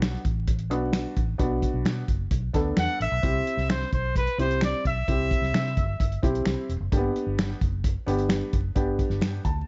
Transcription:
Already playing: B1 B3 D4 F#4
0.02 finger snap, snare, closed hi-hat
0.14 snare
0.24 A1, kick, closed hi-hat
0.48 kick, closed hi-hat
0.59 closed hi-hat
0.70 B1 B3 D4 F#4, closed hi-hat
0.93 finger snap, snare, closed hi-hat
1.17 A1, kick, closed hi-hat
1.38 B1 B3 D4 F#4, kick, closed hi-hat
1.62 kick, closed hi-hat
1.74 B1
1.85 B2, finger snap, snare, closed hi-hat
2.08 F#1, kick, closed hi-hat
2.31 B1, kick, closed hi-hat
2.53 D2 B3 D4 A4, kick, snare, closed hi-hat
2.77 E2 F#5, finger snap, snare, closed hi-hat
3.00 A1 E5, closed hi-hat
3.12 B1
3.22 C2 C4 E4 G4, kick, closed hi-hat
3.47 closed hi-hat
3.57 C2, snare
3.70 C5, finger snap, snare, closed hi-hat
3.81 snare
3.93 B1 C5, kick, closed hi-hat
4.16 B4, kick, closed hi-hat
4.27 closed hi-hat
4.38 C2 C4 E4 G4 C5, closed hi-hat
4.51 closed hi-hat
4.61 D5, finger snap, snare, closed hi-hat
4.85 B1 E5, kick, closed hi-hat
5.08 C2 C4 E4 G4, kick, closed hi-hat
5.31 kick, closed hi-hat
5.42 C2, snare
5.53 C3, finger snap, snare, closed hi-hat
5.66 snare
5.77 G1, kick, closed hi-hat
6.00 G1, kick, closed hi-hat
6.12 closed hi-hat
6.23 B1 C4 E4 G4, kick, closed hi-hat
6.35 closed hi-hat
6.45 C2, finger snap, snare, closed hi-hat
6.69 E1, closed hi-hat
6.80 F#1
6.92 G1 A#3 D4 G4, kick, closed hi-hat
6.97 B3
7.16 closed hi-hat
7.26 G1
7.39 finger snap, snare, closed hi-hat
7.51 snare
7.61 F#1, kick, closed hi-hat
7.84 kick, closed hi-hat
8.06 G1 B3 D4 G4, closed hi-hat
8.18 closed hi-hat
8.29 finger snap, snare, closed hi-hat
8.53 F#1, kick, closed hi-hat
8.75 G1 B3 D4 G4, kick, closed hi-hat
8.99 kick, closed hi-hat
9.10 G1, snare
9.21 G2, finger snap, snare, closed hi-hat
9.45 D2 A5, kick, closed hi-hat

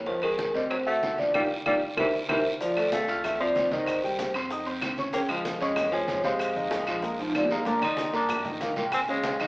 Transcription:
Already playing: F2
0.06 D#3 F3 F4 C5, high bongo, high conga, high timbale, long guiro
0.22 D#3 G#3 G#4 A#4, high bongo, high conga, high timbale, claves
0.38 high bongo, high conga, short guiro
0.54 D2 G3 C4 C5 D#5, high bongo, high timbale, short guiro
0.70 F#3 C5, high bongo, high conga, high timbale, long guiro, claves
0.86 A3 F#4 E5 F#5, high conga
1.02 G1, high bongo, low bongo, high conga, high timbale, short guiro
1.18 F3 D4 D5, high bongo, high conga, high timbale, short guiro
1.34 G1 G3 F4 G4 A#4 D5 F5 G5, low bongo, high conga, high timbale, long guiro, claves
1.66 G1 G3 F4 G4 A#4 D5 F5 G5, low bongo, high conga, high timbale, claves
1.97 C2 E3 G4 A#4 C5 E5, low bongo, high conga, high timbale, long guiro, claves
2.28 C2 E3 G4 A#4 C5 E5, low bongo, high conga, high timbale, long guiro, claves
2.60 F3 F4 D5 F5, high bongo, high conga, high timbale, long guiro, maracas
2.76 A3 A4 A5, high bongo, high conga, high timbale, claves, maracas
2.92 A3 F5, high bongo, high conga, short guiro, maracas
3.07 C2 F4 F5 F6, high bongo, high timbale, short guiro, maracas
3.24 A3 E5, high bongo, high conga, low conga, high timbale, long guiro, claves, maracas
3.39 F3 C4 C5 D5 C6, high conga, maracas
3.55 C2, high bongo, low bongo, high conga, high timbale, short guiro, maracas
3.71 D#3 D#4 C5 D#5, high bongo, high conga, high timbale, short guiro, maracas
3.86 high bongo, high conga, high timbale, long guiro, claves, maracas
4.03 G3 G4 G5, high bongo, high conga, maracas
4.19 high bongo, high conga, high timbale, short guiro, maracas
4.34 F2 C4 C5 C6, high bongo, high conga, high timbale, short guiro, claves, maracas
4.50 D#4 D#5 D#6, high bongo, high conga, long guiro, maracas
4.66 C4 C5 C6, high conga, high timbale, maracas
4.81 A#1, high bongo, low bongo, high conga, high timbale, short guiro, claves, maracas
4.98 C#4 C#5 C#6, high bongo, high conga, short guiro, maracas
5.13 C#3 A#3 C#4 C#5 G5, high bongo, high conga, high timbale, long guiro, maracas
5.28 F3 G#3 F4 F5, high bongo, high conga, high timbale, claves, maracas
5.45 high bongo, high conga, short guiro, maracas
5.61 F2 G#3 C#4 C#5 D#5 C#6, high bongo, high timbale, short guiro, maracas
5.76 high bongo, high conga, low conga, high timbale, long guiro, claves, maracas
5.91 F3 G#3 G#4 C#5 G#5, high conga, low conga, maracas
6.08 F2, high bongo, low bongo, high conga, high timbale, short guiro, maracas
6.23 C3 G#3 C4 C5 F5, high bongo, high conga, high timbale, short guiro, maracas
6.39 high bongo, high conga, high timbale, long guiro, claves, maracas
6.55 D#3 D#4 D#5, high bongo, high conga, maracas
6.71 high bongo, high conga, high timbale, short guiro, maracas
6.87 A#1 F3 F4 F5, high bongo, high conga, high timbale, short guiro, claves, maracas
7.02 A#3 A#4 A#5, high bongo, high conga, long guiro, maracas
7.19 F3 F4 F5, high conga, high timbale, maracas
7.30 high timbale
7.35 D#2 F3 D5, high bongo, low bongo, high conga, short guiro, claves, maracas
7.40 low timbale
7.50 G#3 A#3 A#4 F5 A#5, high bongo, high conga, low timbale, short guiro, maracas
7.65 A#2 A#3 D4 A#4 A#5, high bongo, high conga, high timbale, long guiro, maracas
7.81 D#3 D#4 D5 C6, high bongo, high conga, high timbale, claves, maracas
7.97 high bongo, high conga, short guiro, maracas
8.13 G2 A#3 D4 A#4 A#5, high bongo, high timbale, short guiro, maracas
8.29 high bongo, high conga, low conga, high timbale, long guiro, claves, maracas
8.45 D#3 D#4 D#5, high conga, low conga, maracas
8.61 A#1 A#3 F5, high bongo, low bongo, high conga, high timbale, short guiro, maracas
8.76 A#2 A#3 A#4 G5, high bongo, high conga, high timbale, short guiro, maracas
8.92 C4 G#5, high bongo, high conga, high timbale, long guiro, claves, maracas
9.08 C#3 G#3 C#4 C#5 F5, high bongo, high conga, maracas
9.23 high bongo, high conga, high timbale, short guiro, maracas
9.40 D#2 D#3 D#4 D#5, high bongo, high conga, high timbale, short guiro, claves, maracas

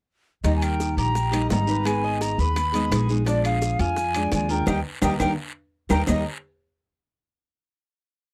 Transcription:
0.43 D#2 D#3 G3 A#3 D#4 G4 D#5, high bongo, high timbale, long guiro, maracas
0.56 G#5
0.62 A#4 G5, high timbale, claves, maracas
0.80 high bongo, short guiro, maracas
0.97 A#1 G4 A#5, high timbale, short guiro, maracas
1.15 muted nylon-string guitar stroke, high bongo, long guiro, maracas
1.31 G3 A#3 D#4 G4 D#5, high timbale, claves, maracas
1.49 G#1 G3 A#3 D#4 G4 A#5, high bongo, low bongo, high timbale, low timbale, short guiro, maracas
1.66 G3 A#3 D#4 G4 B4, short guiro, maracas
1.83 D#3 G#3 B3 D#4 G#4 G#5, high bongo, high timbale, long guiro, claves, maracas
2.04 D#5
2.21 A#5, high bongo, high timbale, short guiro, maracas
2.38 D#2 B4 B5, high bongo, short guiro, maracas
2.56 muted nylon-string guitar stroke, high bongo, high timbale, long guiro, claves, maracas
2.72 G#3 B3 D#4 G#4, high bongo, high timbale, maracas
2.91 A#1 G#3 B3 D#4 G#4, high bongo, low bongo, high timbale, short guiro, claves, maracas
3.08 G#3 B3 D#4 G#4, high bongo, short guiro, maracas
3.25 F3 G#3 D4 F4 D5, high bongo, high timbale, long guiro, maracas
3.44 G#4 F5, high timbale, claves, maracas
3.62 high bongo, short guiro, maracas
3.79 F2 F4 G#5, high timbale, short guiro, maracas
3.96 muted nylon-string guitar stroke, high bongo, long guiro, maracas
4.14 G#3 D4 F4 D5, high timbale, claves, maracas
4.32 D#2 F3 G#3 D4 F4 G#5, high bongo, low bongo, high timbale, short guiro, maracas
4.49 G#3 D4 F4 A#4 G5, short guiro, maracas
4.66 D#2 G3 A#3 D#4 G4 A#4 G5, low bongo, high timbale, long guiro, claves, maracas
5.02 D#2 G3 A#3 D#4 G4 A#4 G5, low bongo, high timbale, claves, maracas
5.19 D#2 G3 A#3 D#4 G4 A#4 G5, low bongo, high timbale, long guiro, claves, maracas
5.89 D#2 G3 A#3 D#4 G4 A#4 G5, low bongo, high timbale, long guiro, claves, maracas
6.07 D#2 D#3 G3 A#3 D#4 G4 A#4 D#5, low bongo, low timbale, long guiro, claves, maracas

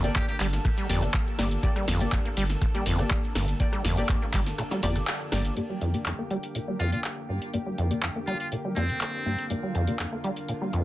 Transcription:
Already playing: D3 A#3 A4
0.04 F3 A#3 G4 D5, closed hi-hat, shaker
0.16 F2 G4, kick, cross-stick, clap, closed hi-hat, ride, shaker
0.28 A#3 G4, shaker
0.40 G1 G3, clap, open hi-hat, ride, shaker
0.53 snare, closed hi-hat, shaker
0.65 A#2, kick, cross-stick, closed hi-hat, ride, shaker
0.78 G3, shaker
0.89 G1 F2 A#3 G4 D5, open hi-hat, ride, shaker
1.02 F3, cross-stick, closed hi-hat, shaker
1.14 kick, clap, closed hi-hat, ride, shaker
1.27 shaker
1.39 G1 G2 A#3 G4 D5, cross-stick, snare, open hi-hat, ride, shaker
1.51 closed hi-hat, shaker
1.63 G2 A#3 G4 D5, kick, closed hi-hat, ride, shaker
1.76 G3, cross-stick, shaker
1.88 G1 F2, snare, open hi-hat, ride, shaker
2.00 F3 A#3 G4 D5, closed hi-hat, shaker
2.12 F2, kick, cross-stick, clap, closed hi-hat, ride, shaker
2.25 A#3, shaker
2.37 G1 G3, open hi-hat, ride, shaker
2.50 snare, closed hi-hat, shaker
2.62 A#2, kick, cross-stick, closed hi-hat, ride, shaker
2.74 G3 A#3 G4 D5, shaker
2.86 G1 F2, open hi-hat, ride, shaker
2.99 F3 A#3 G4 D5, cross-stick, closed hi-hat, shaker
3.11 kick, clap, closed hi-hat, ride, shaker
3.24 shaker
3.35 G1 G2, cross-stick, snare, open hi-hat, ride, shaker
3.48 closed hi-hat, shaker
3.60 G2 A#3 G4 D5, kick, closed hi-hat, ride, shaker
3.73 G3, cross-stick, shaker
3.85 G1 F2, snare, open hi-hat, ride, shaker
3.97 F3 A#3 G4 D5, closed hi-hat, shaker
4.09 F2, kick, cross-stick, clap, closed hi-hat, ride, shaker
4.22 A#3, shaker
4.34 G1 G3, kick, clap, open hi-hat, ride, shaker
4.47 snare, closed hi-hat, shaker
4.58 A#2, cross-stick, closed hi-hat, ride, shaker
4.71 G3, snare, shaker
4.83 G1 F2 A#3 G4 D5, open hi-hat, ride, shaker
4.96 F3, cross-stick, closed hi-hat, shaker
5.07 clap, closed hi-hat, ride, shaker
5.21 shaker
5.32 G1 G2 A#3 G4 D5, cross-stick, snare, open hi-hat, ride, shaker
5.45 closed hi-hat, shaker
5.57 G2 D3 A#3 G4 D5, closed hi-hat
5.70 G3
5.81 F2, closed hi-hat
5.94 F3 A#3 G4 D5, closed hi-hat
6.06 F2, clap, closed hi-hat
6.19 A#3
6.30 G3, closed hi-hat
6.43 closed hi-hat
6.55 A#2, closed hi-hat
6.68 G3 A#3 G4 D5
6.80 F2 F4, closed hi-hat
6.92 F3 A#3 F4 G4 D5, closed hi-hat
7.04 clap, closed hi-hat
7.29 G2
7.42 closed hi-hat
7.53 G2 A#3 G4 D5, closed hi-hat
7.66 G3
7.78 F2, closed hi-hat
7.91 F3 A#3 G4 D5, closed hi-hat
8.03 F2, clap, closed hi-hat
8.16 A#3
8.27 G3 F4, closed hi-hat
8.40 F4, closed hi-hat
8.52 A#2, closed hi-hat
8.65 G3
8.76 F2 A#3 C4 G4 D5, closed hi-hat
8.89 F3, closed hi-hat
9.01 clap, closed hi-hat
9.26 G2 A#3 G4 D5
9.38 closed hi-hat
9.50 G2 A#3 F4 G4 D5, closed hi-hat
9.63 G3
9.75 F2, closed hi-hat
9.87 F3 A#3 G4 D5, closed hi-hat
9.99 F2, clap, closed hi-hat
10.12 A#3
10.24 G3, closed hi-hat
10.37 closed hi-hat
10.49 A#2, closed hi-hat
10.61 G3 A#3 G4 D5
10.73 F2, closed hi-hat

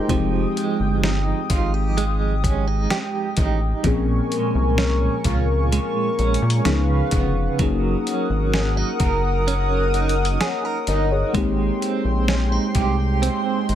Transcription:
Already playing: G#3 C4 D#4 F4 G4 G#4 A#4 C5 G5
0.08 F1 F3 G#3 C4 D#4 G4 D#6, kick, closed hi-hat
0.57 G#3, closed hi-hat
0.80 G1
1.04 D#4, snare
1.50 G#1 F4, kick, closed hi-hat
1.74 G4
1.97 G#3, closed hi-hat
2.44 C#4, kick, closed hi-hat
2.67 D#4
2.90 G4, snare, closed hi-hat
3.37 A1 D#4, kick, closed hi-hat
3.83 A#1 A#2 F3 A#3 C4 C#4 G#4 A#4 G#5 C#6, kick, closed hi-hat
4.32 G#3, closed hi-hat
4.55 C2
4.78 C#4, snare
5.24 C#2 F4, kick, closed hi-hat
5.72 G#3, closed hi-hat
6.19 A#1 C#4, closed hi-hat
6.34 closed hi-hat
6.42 A#2
6.50 closed hi-hat
6.65 C#2 C#3 F3 B3 C#4 D#4 G#4 B4 F5, snare, closed hi-hat
7.11 F1 B3, kick, closed hi-hat
7.59 F#1 F#3 A#3 C#4 D#4 G#4 A#4 F#5 D#6, kick, closed hi-hat
8.06 C#4, closed hi-hat
8.30 G#1
8.54 C#4, snare
8.77 D#4
9.00 F#1 A#4, kick, closed hi-hat
9.48 C#4, closed hi-hat
9.94 D#4, closed hi-hat
10.09 closed hi-hat
10.25 closed hi-hat
10.41 G#4 C#5 F#5, snare, closed hi-hat
10.65 A#4
10.87 G1 D#4 A#4 D#5, closed hi-hat
11.11 G#4 C#5
11.33 G#1 G#3 A#3 C4 D#4 G5 C6, kick, closed hi-hat
11.37 G4
11.81 C4, closed hi-hat
12.05 A#1
12.28 C#4, snare
12.52 D#4
12.75 C2 G4, kick, closed hi-hat
13.22 C4, closed hi-hat
13.69 G#1 D#4, closed hi-hat

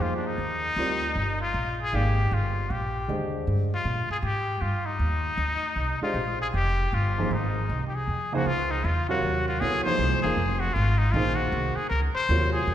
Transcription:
Already playing: F3 A#3 D#4 G#4 C5
0.00 F2 F4
0.17 D4
0.27 D#4
0.38 D#2
0.76 D2 G3 C4 F4 A#4 D5
1.16 G1
1.42 F4
1.54 A#1
1.82 G#4
1.92 G#1 A#3 D#4 G4 G#4 D5 F5
2.31 G1 F4
2.70 A#1 G4
3.08 D#2 D3 G#3 G4 C5 D#5
3.47 G2
3.74 F4
3.85 A#2
4.10 G#4, muted upright bass stroke
4.23 G#2 G4
4.61 G2 F4
4.86 D#4
4.99 D#2
5.37 D2
5.76 C2
6.02 G#3 D4 F4 G4 C5 D#5, muted upright bass stroke
6.14 A#1
6.42 G#4
6.54 F1 G4
6.93 G1 F4
7.18 F3 A#3 D#4 G#4 C5
7.31 G#1 D#4
7.69 C2
7.87 G4
7.95 G#4
8.08 F2
8.32 C#2 F3 A#3 D#4 F#4 G#4 C5
8.46 C#2 F4
8.71 D#4
8.84 E2 F4
9.09 C3 F#3 F#4 A#4 C#5 F5
9.22 D#2
9.48 F4
9.60 C#2 F#3 B3 E4 G#4 A4 C#5
9.84 F3 A#3 D#4 G#4 C5, muted upright bass stroke
9.99 C2
10.12 G#1
10.22 F1 F3 A#3 D#4 G#4 A#4
10.37 F1
10.60 F#4
10.74 G#1 F4
10.98 D#4
11.12 A#1 D#3 A#3 D#4 F4 G#4
11.16 C5
11.36 F#4
11.52 C2
11.76 G#4, muted upright bass stroke
11.90 C#2 A#4
12.15 C5, muted upright bass stroke
12.29 D#2 C3 F#3 F4 A#4 C#5
12.53 G#4
12.67 F2

